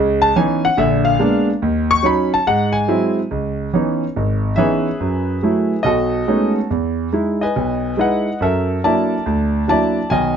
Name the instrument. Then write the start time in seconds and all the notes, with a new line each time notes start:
grand piano
Already playing: C#2 C#3
0.22 A5
0.36 E3 B3 C#4 D#4 G#5
0.65 F#5
0.77 A#1 D3 E5
1.05 F5
1.19 G#3 A#3 B3 D4
1.62 D#2
1.91 C#6
2.03 F#3 C#4 D#4 B5
2.34 A5
2.47 G#2 F#5
2.73 G#5
2.88 F#3 G#3 C4 E4
3.31 C#2
3.73 E3 B3 C#4 D#4
4.16 G#1
4.56 E3 B3 C#4 D#4 G#4 B4 E5
5.00 F#2
5.43 F#3 A3 E4
5.83 B1 F#4 A4 D#5
6.28 G#3 A3 B3 C#4 D#4
6.71 E2
7.12 G#3 D#4 E4
7.41 B4 D#5 G#5
7.56 B1
7.97 G#3 D#4 E4 B4 D#5 F#5
8.41 F#2 A4 A#4 E5
8.84 F#3 A#3 D4 E4 D5 E5 A5
9.26 D2
9.68 F#3 A#3 D4 E4 D5 E5 A5
10.10 B1 D#3 D#5 G#5